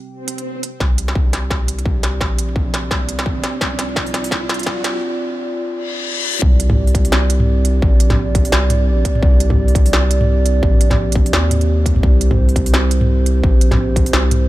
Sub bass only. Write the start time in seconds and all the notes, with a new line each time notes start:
0.80 C2
1.15 C2
2.21 A#1
2.91 C2
3.61 C2
3.96 C2
6.42 C2
6.77 C2
7.82 A#1
8.53 C2
8.89 B1
9.23 C2
9.58 C2
10.63 A#1
11.33 D#2
12.03 C2
12.38 C2
13.43 A#1
14.13 C2